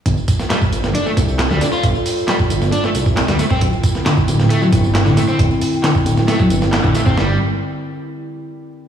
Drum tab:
HH |x-x-x-x-x-x-x-x-|x-o-x-x-x-x-xxx-|x-x-x-x-x-x-x-x-|x-o-x-x-x-x-x-x-|
TB |xxxxxxxxxxxxxxxx|xxxxxxxxxxxxxxxx|xxxxxxxxxxxxxxxx|xxxxxxxxxxxxxxx-|
CP |----x-------x---|----x-------x---|----x-------x---|----x-------x---|
SD |---oo--o----ooo-|----o--o-o--ooo-|---oo--o----ooo-|----o--oo--oo-o-|
BD |o-o--o----o-----|o----o-----o---o|o-o--o----o-----|o----o---o---o-o|

HH |----------------|
TB |----------------|
CP |----------------|
SD |o---------------|
BD |----------------|